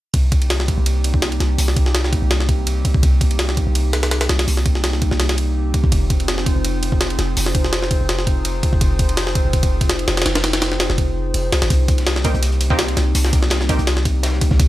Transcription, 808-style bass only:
0.14 C2
0.78 C2
1.40 C2
1.58 C2
2.22 C2
2.94 C2
3.03 C2
3.67 C2
4.29 C2
4.48 C2
5.12 C2
5.84 C2
5.92 F1
6.56 F1
7.19 F1
7.37 F1
8.01 F1
8.73 F1
8.81 F1
9.45 F1
10.08 F1
10.26 F1
10.90 F1
11.34 F1
11.52 C2
11.62 G#1
11.70 C2
12.34 C2
12.97 C2
13.15 C2
13.79 C2
14.51 C2
14.60 C2

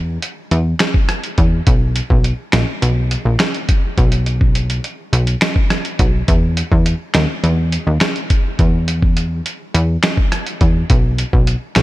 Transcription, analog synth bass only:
Already playing: E2
0.51 E2
1.38 E2
1.67 B1
2.10 B1
2.53 A#1
2.82 B1
3.25 A#1
3.98 B1
5.13 B1
5.99 B1
6.28 E2
6.72 E2
7.15 D#2
7.44 E2
7.87 D#2
8.59 E2
9.74 E2
10.61 E2
10.90 B1
11.33 B1
11.76 A#1

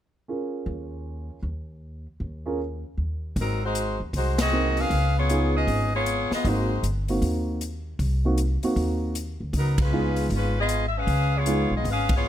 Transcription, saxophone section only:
3.39 F#3 C4 D#4 A#4
3.64 G#3 D#4 F#4 C5
4.15 G#3 D#4 F#4 C5
4.41 C4 F#4 G#4 D#5
4.79 C#4 G#4 B4 F5
5.17 B3 F4 G#4 C#5
5.55 C#4 G#4 B4 D#5
5.94 B3 F4 G#4 C#5
6.31 B3 F4 G#4 D#5
6.46 G#3 D#4 F#4 C5
9.55 F#3 B3 D#4 A#4
9.81 G#3 C#4 F4 B4
10.35 G#3 C#4 F4 B4
10.60 B3 F4 G#4 D#5
10.87 E5
10.97 C#4 G#4 B4 F5
11.37 B3 F4 G#4 C#5
11.76 B3 F4 G#4 D#5
11.90 C#4 G#4 B4 F5
12.15 B3 F4 G#4 C#5

